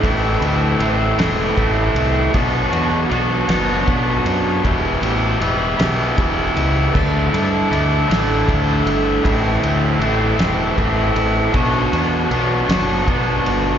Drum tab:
CC |------|------|------|x-----|
RD |xxxxxx|xxxxxx|xxxxxx|-xxxxx|
SD |---o--|---o--|---o--|---o--|
BD |o---o-|o---o-|o---o-|o---o-|

CC |------|------|
RD |xxxxxx|xxxxxx|
SD |---o--|---o--|
BD |o---o-|o---o-|